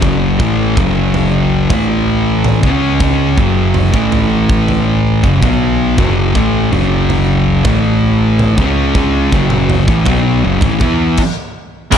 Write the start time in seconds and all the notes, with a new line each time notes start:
0.02 F#1 F#2 C#3 F#3, kick, floor tom
0.39 A1 A2 E3 A3, kick
0.77 F#1 F#2 C#3 F#3, kick, floor tom
1.14 floor tom
1.70 A1 A2 E3 A3, kick, floor tom
2.44 floor tom, mid tom
2.63 C#2 C#3 G#3 C#4, kick
3.00 kick, floor tom
3.37 F#1 F#2 C#3 F#3, kick
3.74 floor tom
3.93 A2 E3 A3, kick
4.12 floor tom
4.50 kick
4.68 floor tom
5.24 F#1 F#2 C#3, kick
5.41 B1 B2 F#3 B3, kick, floor tom, mid tom
5.97 F#1 F#2 C#3 F#3, kick, floor tom
6.35 A1 A2 E3 A3, kick
6.71 F#1 F#2 C#3 F#3, floor tom
7.10 floor tom
7.65 A1 A2 E3 A3, kick, floor tom
8.39 floor tom, mid tom
8.58 C#2 C#3 G#3 C#4, kick
8.95 kick, floor tom
9.32 F#1 F#2 C#3 F#3, kick
9.50 mid tom
9.70 floor tom
9.88 A1 A2 E3, kick
10.06 B1 B2 F#3 B3, kick, floor tom
10.44 F#1 F#2 C#3
10.61 A1 A2 E3, kick, floor tom
10.80 E2 E3 B3 E4, kick, mid tom
11.17 kick, crash
11.92 C#1 C#2 G#2 C#3, kick, crash